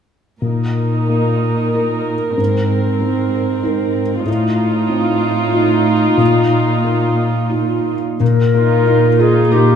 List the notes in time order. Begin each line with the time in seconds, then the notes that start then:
0.42 A#2 D#4 A#4
1.09 A#3
1.74 D#4 A#4
2.38 G#2 C4
3.00 C4
3.63 D#4 A#4
4.26 A2 D#4 F4
4.89 C4
5.53 D#4 F4
6.17 A#2
6.84 A#3
7.50 D#4 F4
8.20 A#2 A#4
8.54 A#3 D#4 F4
8.86 A#2 D#4 A#4
9.19 D#4 F4 G#4 D#5
9.51 A#2 D#4 G4 A#4